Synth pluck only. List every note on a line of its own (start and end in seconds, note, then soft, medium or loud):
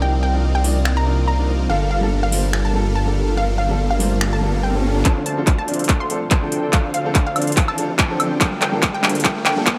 0.02 0.15 G5 medium
0.23 0.41 G5 medium
0.55 0.79 G5 medium
0.97 1.15 A#5 medium
1.28 1.40 A#5 medium
1.70 1.82 F5 medium
1.91 2.09 F5 medium
2.23 2.47 F5 medium
2.65 2.83 A5 medium
2.96 3.08 A5 medium
3.37 3.50 F5 medium
3.58 3.77 F5 medium
3.91 4.15 F5 medium
4.33 4.51 A5 medium
4.63 4.76 G5 medium
5.05 5.18 A5 medium
5.26 5.45 A5 medium
5.58 5.83 A5 medium
6.00 6.18 C6 medium
6.31 6.44 C6 medium
6.73 6.86 F5 medium
6.94 7.13 F5 medium
7.27 7.51 F5 medium
7.68 7.86 A5 medium
7.99 8.12 A5 medium
8.41 8.54 G5 medium
8.62 8.80 G5 medium
8.94 9.18 G5 medium
9.25 9.38 G5 medium
9.46 9.64 G5 medium